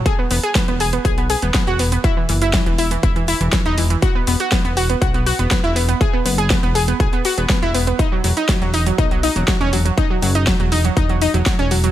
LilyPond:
<<
  \new Staff \with { instrumentName = "Synth pluck" } { \time 4/4 \key e \major \tempo 4 = 121 gis'16 b16 b16 gis'16 b16 b16 gis'16 b16 gis'16 b16 gis'16 b16 b16 fis'16 b16 b16 | e'16 e16 e16 e'16 e16 e16 e'16 e16 e'16 e16 e'16 e16 e16 dis'16 e16 e16 | fis'16 b16 b16 fis'16 b16 b16 fis'16 b16 fis'16 b16 fis'16 b16 b16 e'16 b16 b16 | gis'16 b16 b16 gis'16 b16 b16 gis'16 b16 gis'16 b16 fis'16 b16 b16 e'16 b16 b16 |
dis'16 fis16 fis16 dis'16 fis16 fis16 dis'16 fis16 dis'16 fis16 dis'16 fis16 fis16 cis'16 fis16 fis16 | dis'16 fis16 fis16 dis'16 fis16 fis16 dis'16 fis16 dis'16 fis16 dis'16 fis16 fis16 cis'16 fis16 fis16 | }
  \new Staff \with { instrumentName = "Analog synth bass" } { \clef bass \time 4/4 \key e \major r8 e,,16 r8 e,,8 r16 b,,8 r16 e,,16 r16 e,,8 r16 | r8 fis,,8 r16 e,,8 r16 e,,8 r16 e,,16 r16 e,,8 r16 | r8 e,,16 r8 e,,8 r16 b,,8 r16 e,,16 r16 e,,8 r16 | r8 fis,,8 r16 e,,8 r16 b,,16 r8 e,,16 r16 e,,8 r16 |
r8 e,,16 r8 e,,8 r16 b,,8 r16 e,,16 r16 e,,8 r16 | r8 fis,,8 r16 e,,8 r16 e,,8 r16 e,,16 r16 e,,8 r16 | }
  \new DrumStaff \with { instrumentName = "Drums" } \drummode { \time 4/4 <hh bd>8 hho16 hh16 <hh bd sn>16 hh16 hho16 hh16 <hh bd>16 hh16 hho16 hh16 <hh bd sn>16 hh16 hho16 hh16 | <hh bd>8 hho16 hh16 <hh bd sn>16 hh16 hho16 hh16 <hh bd>16 hh16 hho16 hh16 <hh bd sn>16 hh16 hho16 hh16 | <hh bd>8 hho16 hh16 <hh bd sn>16 hh16 hho16 hh16 <hh bd>16 hh16 hho16 hh16 <hh bd sn>16 hh16 hho16 hh16 | <hh bd>8 hho16 hh16 <hh bd sn>16 hh16 hho16 hh16 <hh bd>16 hh16 hho16 hh16 <hh bd sn>16 hh16 hho16 hh16 |
<hh bd>8 hho16 hh16 <hh bd sn>16 hh16 hho16 hh16 <hh bd>16 hh16 hho16 hh16 <hh bd sn>16 hh16 hho16 hh16 | <hh bd>8 hho16 hh16 <hh bd sn>16 hh16 hho16 hh16 <hh bd>16 hh16 hho16 hh16 <hh bd sn>16 hh16 hho16 hh16 | }
>>